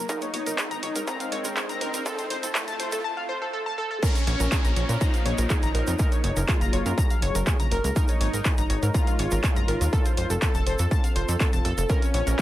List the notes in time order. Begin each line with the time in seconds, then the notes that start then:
Already playing: riser
0.09 G#3 D#4 A#4 D#5, kick, closed hi-hat, shaker
0.21 C#5, closed hi-hat, shaker
0.34 G#1 C#5, open hi-hat
0.46 G#1 A#4, closed hi-hat, shaker
0.58 G#4, kick, clap, closed hi-hat, shaker
0.71 G#1 A#5, closed hi-hat, shaker
0.83 G#1 C#5, open hi-hat
0.96 G#2 A#4, closed hi-hat, shaker
1.07 C4 A#5, kick, closed hi-hat, shaker
1.20 F5, closed hi-hat, shaker
1.32 G#1 C#5, open hi-hat
1.45 G#1 A#4, closed hi-hat, shaker
1.57 G#4, kick, clap, closed hi-hat, shaker
1.69 G#1 A#5, closed hi-hat, shaker
1.81 F#1 A#4, open hi-hat
1.94 G#1 A#4, closed hi-hat, shaker
2.06 C4 F4 A4, kick, closed hi-hat, shaker
2.18 C5, closed hi-hat, shaker
2.30 F1 C5, open hi-hat
2.43 F1 A4, closed hi-hat, shaker
2.55 A3 A4, kick, clap, closed hi-hat, shaker
2.68 F1 A5, closed hi-hat, shaker
2.80 F1 C5, open hi-hat
2.92 F2 A4, closed hi-hat, shaker
3.04 A5
3.17 F5
3.29 C5
3.42 A4
3.53 A4
3.66 A5
3.78 A4
3.91 A4
4.03 A#3 C#4 F4 A#4 C5 C#5, kick, closed hi-hat, crash, downlifter, shaker
4.15 C#5, closed hi-hat, shaker
4.27 A#1 C#5, open hi-hat
4.40 A#1 A#4, closed hi-hat, shaker
4.52 G#4, kick, clap, closed hi-hat, shaker
4.64 A#1 A#5, closed hi-hat, shaker
4.76 A#1 C#5, open hi-hat
4.89 A#2 A#4, closed hi-hat, shaker
5.01 D#4 A#5, kick, closed hi-hat, shaker
5.14 F5, closed hi-hat, shaker
5.26 A#1 C#5, open hi-hat
5.38 A#1 A#4, closed hi-hat, shaker
5.50 G#4, kick, clap, closed hi-hat, shaker
5.63 G#1 A#5, closed hi-hat, shaker
5.75 A#1 A#4, open hi-hat
5.87 F2 A#4, closed hi-hat, shaker
5.99 F#3 A#3 G#4 A#4, kick, closed hi-hat, shaker
6.12 C#5, closed hi-hat, shaker
6.24 F#1 C#5, open hi-hat
6.37 F#1 A#4, closed hi-hat, shaker
6.48 F4 G#4, kick, clap, closed hi-hat, shaker
6.61 F#1 A#5, closed hi-hat, shaker
6.73 F#1 C#5, open hi-hat
6.86 F#2 A#4, closed hi-hat, shaker
6.98 A#5, kick, closed hi-hat, shaker
7.10 F5, closed hi-hat, shaker
7.22 F#1 C#5, open hi-hat
7.35 F#1 A#4, closed hi-hat, shaker
7.46 G#4, kick, clap, closed hi-hat, shaker
7.60 C#2 A#5, closed hi-hat, shaker
7.71 F#1 A#4, open hi-hat
7.84 C#2 A#4, closed hi-hat, shaker
7.96 G#3 D#4 A#4 C#5, kick, closed hi-hat, shaker
8.08 C#5, closed hi-hat, shaker
8.21 G#1 C#5, open hi-hat
8.33 G#1 A#4, closed hi-hat, shaker
8.45 G#4, kick, clap, closed hi-hat, shaker
8.57 G#1 A#5, closed hi-hat, shaker
8.70 G#1 C#5, open hi-hat
8.83 G#2 A#4, closed hi-hat, shaker
8.94 F4 A#5, kick, closed hi-hat, shaker
9.07 F5, closed hi-hat, shaker
9.19 G#1 C#5, open hi-hat
9.31 G#1 A#4, closed hi-hat, shaker
9.44 G#4, kick, clap, closed hi-hat, shaker
9.56 F#1 A#5, closed hi-hat, shaker
9.68 G#1 A#4, open hi-hat
9.81 D#2 A#4, closed hi-hat, shaker
9.93 C4 F4 A4, kick, closed hi-hat, shaker
10.05 C5, closed hi-hat, shaker
10.17 F1 C5, open hi-hat
10.30 F1 A4, closed hi-hat, shaker
10.42 A4, kick, clap, closed hi-hat, shaker
10.55 F1 A5, closed hi-hat, shaker
10.66 F1 C5, open hi-hat
10.79 F2 A4, closed hi-hat, shaker
10.91 A5, kick, closed hi-hat, shaker
11.04 F5, closed hi-hat, shaker
11.16 F1 C5, open hi-hat
11.28 F2 A4, closed hi-hat, shaker
11.40 A4, kick, clap, closed hi-hat, shaker
11.53 F1 A5, closed hi-hat, shaker
11.65 F1 A4, open hi-hat
11.78 F1 A4, closed hi-hat, shaker
11.89 A#3 C#4 A#4 C5 C#5, kick, closed hi-hat, shaker
12.02 C#5, closed hi-hat, shaker
12.14 A#1 C#5, open hi-hat
12.27 A#1 A#4, closed hi-hat, shaker